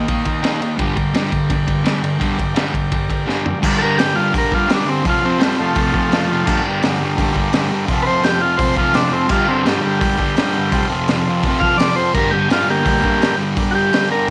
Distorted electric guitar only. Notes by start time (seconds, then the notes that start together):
0.09 D#3 A#3
0.26 D#3 A#3
0.43 D#3 A#3 D#4
0.61 D#3 A#3
0.77 G2 D3 G3
0.97 G2 D3
1.13 G2 D3 G3
1.33 G2 D3
1.50 G2 D3
1.67 G2 D3
1.84 G2 D3 G3
2.02 G2 D3
2.19 G2 D3 G3
2.38 G2 D3
2.55 G2 D3 G3
2.73 G2 D3
2.92 G2 D3
3.09 G2 D3
3.26 G2 D3 G3
3.46 G2 D3
3.62 G2 D3
3.66 G3
3.81 G3
3.86 D3
3.98 G2 D3 G3
4.14 D3 G3
4.32 G2 D3 G3
4.51 D3 G3
4.56 G2
4.68 G2 D3
4.72 G3
4.85 G3
4.89 D3
5.03 F2 C3
5.07 F3
5.21 C3 F3
5.39 F2 C3 F3
5.56 F3
5.60 C3
5.74 F2 C3 F3
5.92 F2 C3 F3
6.10 F2 C3 F3
6.28 F3
6.33 C3
6.45 G2 D3 G3
6.64 G3
6.68 D3
6.82 G2 D3
6.86 G3
7.00 G3
7.05 D3
7.17 G2 D3
7.22 G3
7.33 D3 G3
7.37 G2
7.51 G2 D3
7.55 G3
7.69 G3
7.73 D3
7.87 F2 C3
7.91 F3
8.06 F3
8.10 C3
8.21 F2 C3
8.25 F3
8.41 C3 F3
8.58 F2 C3
8.63 F3
8.77 C3 F3
8.81 F2
8.93 F2 C3 F3
9.10 F3
9.14 C3
9.27 G2 D3
9.31 G3
9.47 G3
9.51 D3
9.64 G2 D3
9.68 G3
9.81 D3 G3
10.00 G2 D3 G3
10.18 G2 D3 G3
10.36 G2 D3 G3
10.53 G3
10.58 D3
10.72 F2 C3
10.76 F3
10.90 F3
10.94 C3
11.08 F2 C3
11.13 F3
11.26 F3
11.30 C3
11.45 F2 C3
11.49 F3
11.61 F2 C3 F3
11.77 F2 C3
11.81 F3
11.95 F3
11.99 C3
12.13 G2 D3 G3
12.32 G3
12.36 D3
12.49 G2 D3 G3
12.65 G3
12.69 D3
12.84 G2 D3
12.88 G3
13.02 D3 G3
13.06 G2
13.19 G2 D3
13.23 G3
13.37 G3
13.41 D3
13.55 G2 D3
13.60 G3
13.73 D3 G3
13.91 G2 D3 G3
14.09 D3 G3